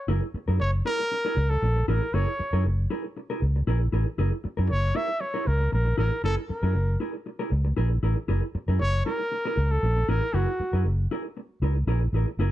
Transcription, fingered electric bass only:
0.09 F#1
0.34 muted fingered electric bass stroke
0.48 F#2
0.60 F#1
1.37 C#2
1.62 A#1
1.88 A1
2.14 F#1
2.40 muted fingered electric bass stroke
2.53 F#2
2.65 F#1
3.42 C#2
3.67 A#1
3.93 A1
4.19 F#1
4.45 muted fingered electric bass stroke
4.59 F#2
4.71 F#1
5.47 C#2
5.73 A#1
5.98 A1
6.24 F#1
6.50 muted fingered electric bass stroke
6.63 F#2
6.75 F#1
7.52 C#2
7.78 A#1
8.03 A1
8.29 F#1
8.55 muted fingered electric bass stroke
8.68 F#2
8.81 F#1
9.57 C#2
9.83 A#1
10.08 A1
10.34 F#1
10.60 muted fingered electric bass stroke
10.73 F#2
10.85 F#1
11.62 C#2
11.87 A#1
12.13 A1
12.39 F#1

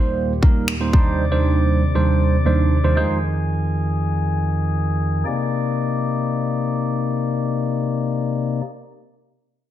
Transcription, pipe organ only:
Already playing: D#2 A#2 G3
0.93 C3 D5
2.97 F2 D#3 G#4
5.26 C3 A#3 D#4 D5

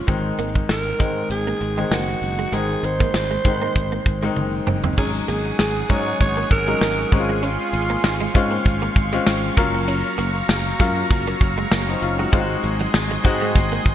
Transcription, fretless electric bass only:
0.08 G#1
0.39 G#1
0.69 G#1
1.00 G#2
1.30 G#1
1.61 G#1
1.91 F#1
2.22 F#1
2.52 G#1
2.83 G#1
3.14 G#1
3.45 G#2
3.76 G#1
4.06 G#1
4.37 F#1
4.67 F#1
4.98 G#1
5.29 G#1
5.60 G#1
5.90 G#2
6.21 G#1
6.51 G#1
6.81 G#1
7.12 G#1
7.73 G#1
8.04 G#1
8.35 G#2
8.66 G#1
8.96 G#1
9.27 G#1
9.57 F#1
10.19 F#1
10.49 F#1
10.80 F#2
11.11 F#1
11.41 F#1
11.72 F#1
12.02 F#1
12.33 G#1
12.64 G#1
12.94 G#1
13.25 G#2
13.55 G#1
13.86 G#1

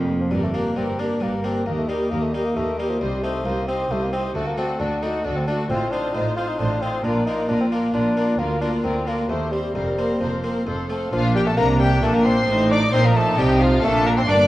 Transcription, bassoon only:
0.20 F3
0.31 G3
0.43 A3
0.54 A#3
0.77 C4
0.99 D4
1.22 A#3
1.44 C4
1.66 A#3
1.78 A3
1.89 G3
2.10 A#3
2.22 A3
2.33 G3
2.45 A#3
2.56 A3
2.79 G3
2.90 F3
3.00 G3
3.23 A3
3.45 A#3
3.68 C4
3.91 A3
4.02 A#3
4.13 C4
4.36 A3
4.47 A#3
4.58 C4
4.80 D4
5.03 D#4
5.25 D4
5.36 C4
5.48 D4
5.70 C4
5.92 D4
6.14 D#4
6.36 F4
6.48 D#4
6.58 D4
6.82 C4
7.04 D4
7.26 D#4
7.49 D4
7.61 C4
7.72 A#3
7.94 D4
8.39 A#3
8.61 D4
8.84 C4
9.07 A#3
9.29 A3
9.52 G3
9.75 G3
10.21 F3
11.13 F3
11.35 G3
11.46 A3
11.57 A#3
11.80 G3
12.03 A3
12.14 A#3
12.25 C4
12.71 D4
12.93 C4
13.05 A#3
13.16 A3
13.38 G3
13.61 F3
13.84 A3
14.06 A#3
14.17 C4
14.28 D4

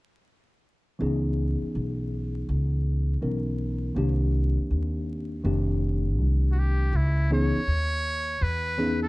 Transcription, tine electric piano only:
0.99 E3 B3 C#4 D#4 G#4
3.21 E3 B3 C#4 D#4 A#4
3.95 D#3 A#3 C4 D4 G4
5.43 D#3 A3 C4 D4 G4
7.30 E3 B3 C#4 D#4 G#4
8.78 E3 B3 C#4 D#4 G#4

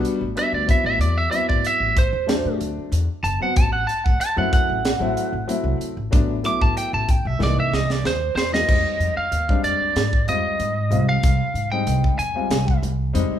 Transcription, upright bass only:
0.21 A1
0.53 D2
0.68 muted upright bass stroke
0.84 A1
0.99 E2
1.50 A1
1.64 muted upright bass stroke
1.80 A1
2.13 E2
2.45 A2
2.60 D2
2.77 muted upright bass stroke
2.92 E2
3.23 F#1
3.39 muted upright bass stroke
3.56 A1
4.06 A1
4.19 muted upright bass stroke
4.37 F#2
4.69 A1
5.00 A1
5.33 A1
5.64 C2
5.80 muted upright bass stroke
5.97 A1
6.13 A1
6.61 A1
6.76 muted upright bass stroke
6.93 A1
7.25 B1
7.40 C2
7.57 C3
7.72 C2
8.04 D#2
8.35 E2
8.68 F2
8.99 F2
9.17 muted upright bass stroke
9.32 D#2
9.64 F2
9.80 muted upright bass stroke
9.96 G#2
10.28 F2
10.60 G#2
10.91 C2
11.23 C2
11.54 G#2
11.87 C2
12.18 F2
12.50 C2
12.82 C2
13.15 F2
13.30 muted upright bass stroke

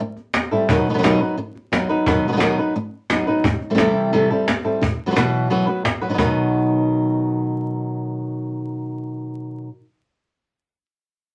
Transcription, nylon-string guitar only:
0.00 muted nylon-string guitar stroke
0.51 G3 C4 E4 A4
0.69 B2 D#3 F#3 B3 D#4 B4
0.89 D#3 F#3 B3 D#4 B4
0.94 D#3 F#3 B3 D#4 B4
0.98 D#3 F#3 B3 D#4 B4
1.03 B2 D#3 F#3 B3 D#4 B4
1.21 F#3 B3 D#4 B4
1.37 muted nylon-string guitar stroke
1.72 F#3 B3 D#4 B4
1.89 F#3 B3 D#4 B4
2.06 B2 D#3 F#3 B3 D#4 B4
2.28 D#3 F#3 B3 D#4 B4
2.32 D#3 F#3 B3 D#4 B4
2.37 D#3 F#3 B3 D#4 B4
2.41 B2 D#3 F#3 B3 D#4 B4
2.59 F#3 B3 D#4 B4
2.76 muted nylon-string guitar stroke
3.11 F#3 B3 D#4 B4
3.27 F#3 B3 D#4 B4
3.45 muted nylon-string guitar stroke
3.70 E3 G3 C4 E4 A4
3.75 E3 G3 C4 E4 A4
3.79 C3 E3 G3 C4 E4 A4
4.13 C3 E3 G3 C4 E4 A4
4.31 G3 C4 E4 A4
4.47 muted nylon-string guitar stroke
4.65 G3 C4 E4 A4
4.82 muted nylon-string guitar stroke
5.06 E3 F#3 B3 F#4 B4
5.11 E3 F#3 B3 F#4 B4
5.15 B2 E3 F#3 B3 F#4 B4
5.50 B2 E3 F#3 B3 F#4 B4
5.67 F#3 B3 F#4 B4
5.85 muted nylon-string guitar stroke
6.01 F#3 B3 F#4 B4
6.09 D#3 F#3 B3 D#4 B4
6.14 D#3 F#3 B3 D#4 B4
6.18 B2 D#3 F#3 B3 D#4 B4

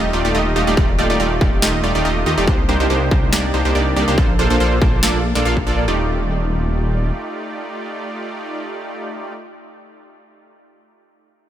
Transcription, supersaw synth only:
Already playing: A3 D#4 F4 G4 D#5
0.13 A3 D#4 F4 G4 D5
0.25 A3 D#4 F4 G4 D5
0.35 A3 D#4 F4 G4 D#5
0.56 A3 D#4 F4 G4 D#5
0.67 A3 D#4 F4 G4 D5
0.99 A3 D#4 F4 G4 D5
1.10 A3 D#4 F4 G4 D5
1.20 A3 D#4 F4 G4 D5
1.41 A3 D#4 F4 G4 D5
1.62 A3 D#4 F4 G4 D#5
1.84 A3 D#4 F4 G4 D5
1.95 A3 D#4 F4 G4 D5
2.05 A3 D#4 F4 G4 D#5
2.26 A3 D#4 F4 G4 D#5
2.38 A3 D#4 F4 G4 D5
2.47 A#3 D4 D#4
2.69 A#3 D4 D#4 G4 C5
2.80 A#3 D4 D#4 G4 C5
2.90 A#3 D4 D#4 G4 C5
3.11 A#3 D4 D#4 G4 C5
3.33 A#3 D4 D#4 G4 D5
3.54 A#3 D4 D#4 G4 C5
3.65 A#3 D4 D#4 G4 C5
3.75 A#3 D4 D#4 G4 D5
3.96 A#3 D4 D#4 G4 D5
4.08 A#3 D4 D#4 G4 C5
4.18 D4 F4 A4 C5
4.39 A#3 D4 F4 A4 C5
4.50 A#3 D4 F4 A4 C5
4.60 A#3 D4 F4 A4 C5
4.82 A#3 D4 F4 A4 C5
5.03 A#3 D4 F4 A4 D5
5.35 A#3 D4 F4 A4 D5
5.45 A#3 D4 F4 A4 F5
5.67 A#3 D4 F4 A4 D5
5.88 A3 D#4 F4 G4 D5

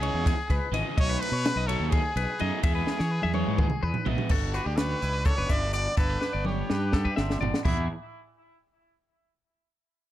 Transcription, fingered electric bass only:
0.14 E2
0.50 C#2
0.72 G#1
0.98 B1
1.32 B2
1.56 B1
1.80 D#2
2.16 B1
2.41 F#2
2.63 E2
3.00 E3
3.24 E2
3.48 G#2
3.83 E2
4.06 B1
4.30 G1
4.66 D2
5.03 C#2
5.38 F#1
5.50 G1
5.98 G1
6.34 G1
6.70 G2
7.18 G1
7.41 G1
7.65 E2

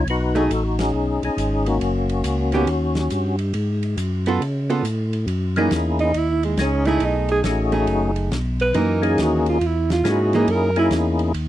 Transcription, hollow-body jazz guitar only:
0.35 A3 D#4 G#4
2.53 D#3 B3 C#4 G4
4.27 B3 F4 A4
4.70 B3 F4 A4
5.57 E3 A#3 D#4
6.87 A3 D#4 G#4
7.72 A3 D#4 G#4
8.74 E3 A#3 D#4
10.34 E3 A#3 D#4

